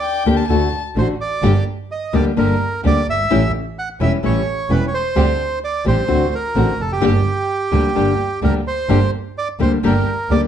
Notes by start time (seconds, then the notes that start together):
Already playing: D5
0.02 G5
0.26 D2 D3 A#3 D4 G4
0.37 A5
0.48 D2 D3 A3 D4 F#4 A5
0.96 A1 D3 A3 D4 F#4 C5
1.21 D5
1.43 G1 D3 G3 A#3 D4 G4
1.92 D#5
2.13 D2 D3 G3 A#3 D4 G4 D5
2.37 G1 D3 G3 A#3 D4 G4 A#4
2.84 D2 D3 G3 A#3 D4 G4 D5
3.08 G1 E5
3.30 A1 E3 G3 A3 C#4 E4 G4
3.79 F#5
4.00 E1 E3 G3 A3 C#4 E4 G4 E5
4.23 A1 E3 G3 A3 C#4 E4 G4 C#5
4.70 E1 E3 G3 A3 C#4 E4 G4 B4
4.88 C#5
4.94 C5
5.15 D2 D3 G3 C4 D4 G4
5.64 D5
5.85 A1 D3 G3 C4 D4 G4 C5
6.07 D2 D3 A3 C4 D4 F#4
6.35 A#4
6.55 A1 D3 A3 C4 D4 F#4
6.79 F1 A4
6.92 G4
7.01 G1 D3 G3 A#3 D4 G4
7.71 D2 D3 G3 A#3 D4 G4
7.95 G1 D3 G3 A#3 D4 G4
8.42 D2 D3 G3 A#3 D4 G4 A#4
8.67 C5
8.89 G1 D3 G3 A#3 D4 G4
9.38 D5
9.59 D2 D3 G3 A#3 D4 G4 C5
9.83 G1 D3 G3 A#3 D4 G4 A#4
10.30 D2 D3 G3 A#3 D4 G4 D5